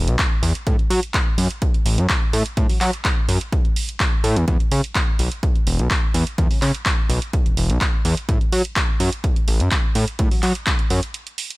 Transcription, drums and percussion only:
0.08 closed hi-hat medium
0.19 kick loud
0.19 clap loud
0.19 closed hi-hat medium
0.43 open hi-hat loud
0.55 closed hi-hat medium
0.67 kick loud
0.67 closed hi-hat medium
0.79 closed hi-hat soft
0.91 open hi-hat loud
1.03 closed hi-hat medium
1.14 kick loud
1.14 clap loud
1.14 closed hi-hat medium
1.38 open hi-hat loud
1.51 closed hi-hat medium
1.62 kick loud
1.62 closed hi-hat medium
1.74 closed hi-hat soft
1.86 open hi-hat loud
1.98 closed hi-hat medium
2.10 kick loud
2.10 clap loud
2.10 closed hi-hat medium
2.33 open hi-hat loud
2.46 closed hi-hat medium
2.57 kick loud
2.57 closed hi-hat medium
2.69 open hi-hat medium
2.81 clap medium
2.81 open hi-hat loud
2.93 closed hi-hat soft
3.05 kick loud
3.05 clap loud
3.05 closed hi-hat medium
3.29 open hi-hat loud
3.41 closed hi-hat medium
3.52 kick loud
3.52 closed hi-hat medium
3.65 closed hi-hat soft
3.76 open hi-hat loud
3.89 closed hi-hat medium
4.00 kick loud
4.00 clap loud
4.00 closed hi-hat medium
4.24 open hi-hat loud
4.36 closed hi-hat medium
4.48 kick loud
4.48 closed hi-hat medium
4.60 closed hi-hat soft
4.71 open hi-hat loud
4.84 closed hi-hat medium
4.95 kick loud
4.95 clap loud
4.95 closed hi-hat medium
5.19 open hi-hat loud
5.32 closed hi-hat medium
5.43 kick loud
5.43 closed hi-hat medium
5.56 closed hi-hat soft
5.67 open hi-hat loud
5.79 closed hi-hat soft
5.91 kick loud
5.91 clap loud
5.91 closed hi-hat medium
6.14 open hi-hat loud
6.27 closed hi-hat medium
6.38 kick loud
6.38 closed hi-hat medium
6.51 open hi-hat medium
6.62 clap medium
6.62 open hi-hat loud
6.75 closed hi-hat medium
6.86 kick loud
6.86 clap loud
6.86 closed hi-hat medium
7.10 open hi-hat loud
7.22 closed hi-hat medium
7.33 kick loud
7.33 closed hi-hat medium
7.46 closed hi-hat soft
7.57 open hi-hat loud
7.70 closed hi-hat medium
7.81 kick loud
7.81 clap loud
7.81 closed hi-hat medium
8.05 open hi-hat loud
8.17 closed hi-hat medium
8.29 kick loud
8.29 closed hi-hat medium
8.41 closed hi-hat soft
8.52 open hi-hat loud
8.65 closed hi-hat medium
8.76 kick loud
8.76 clap loud
8.76 closed hi-hat medium
9.00 open hi-hat loud
9.13 closed hi-hat medium
9.24 kick loud
9.24 closed hi-hat medium
9.36 closed hi-hat soft
9.48 open hi-hat loud
9.60 closed hi-hat medium
9.71 kick loud
9.71 clap loud
9.71 closed hi-hat medium
9.95 open hi-hat loud
10.08 closed hi-hat medium
10.19 kick loud
10.19 closed hi-hat medium
10.31 open hi-hat medium
10.43 clap medium
10.43 open hi-hat loud
10.55 closed hi-hat medium
10.67 kick loud
10.67 clap loud
10.67 closed hi-hat medium
10.79 closed hi-hat soft
10.90 open hi-hat loud
11.03 closed hi-hat medium
11.14 closed hi-hat medium
11.27 closed hi-hat soft
11.38 open hi-hat loud
11.50 closed hi-hat medium

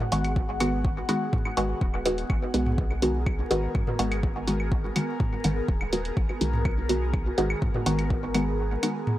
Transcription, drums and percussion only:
0.00 mid tom loud
0.12 closed hi-hat medium
0.24 closed hi-hat soft
0.24 claves soft
0.36 kick loud
0.60 closed hi-hat medium
0.60 claves medium
0.85 kick loud
1.09 closed hi-hat medium
1.09 claves soft
1.33 kick loud
1.33 mid tom medium
1.45 claves medium
1.57 closed hi-hat medium
1.81 kick loud
1.94 claves soft
2.06 closed hi-hat medium
2.18 closed hi-hat soft
2.30 kick loud
2.30 claves medium
2.54 closed hi-hat medium
2.66 mid tom medium
2.78 kick loud
2.91 claves soft
3.02 closed hi-hat medium
3.26 kick loud
3.26 claves medium
3.51 closed hi-hat medium
3.75 kick loud
3.75 claves soft
3.87 mid tom medium
3.99 closed hi-hat medium
4.12 closed hi-hat soft
4.12 claves medium
4.23 kick loud
4.47 closed hi-hat medium
4.60 claves soft
4.72 kick loud
4.96 closed hi-hat medium
4.96 claves medium
5.20 kick loud
5.20 mid tom medium
5.44 closed hi-hat medium
5.44 claves soft
5.68 kick loud
5.81 claves medium
5.93 closed hi-hat medium
6.05 closed hi-hat soft
6.17 kick loud
6.29 claves soft
6.41 closed hi-hat medium
6.53 mid tom medium
6.65 kick loud
6.65 claves medium
6.89 closed hi-hat medium
7.13 kick loud
7.13 claves soft
7.38 closed hi-hat medium
7.50 claves medium
7.62 kick loud
7.74 mid tom medium
7.86 closed hi-hat medium
7.99 closed hi-hat soft
7.99 claves soft
8.10 kick loud
8.34 closed hi-hat medium
8.34 claves medium
8.83 closed hi-hat medium
8.83 claves soft
9.07 mid tom loud

